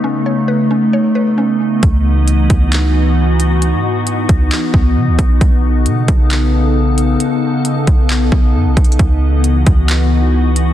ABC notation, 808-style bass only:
X:1
M:4/4
L:1/16
Q:1/4=134
K:C#m
V:1 name="808-style bass" clef=bass
z16 | C,,6 C,,8- C,,2- | C,, G,,4- G,, C,,2 z2 C,,2 C, C,, B,,,2 | B,,,4 B,,2 B,,,8- B,,,2 |
z6 B,,,4 B,,,2 F,, B,,, B,,,2 | C,,6 C,,8- C,,2 |]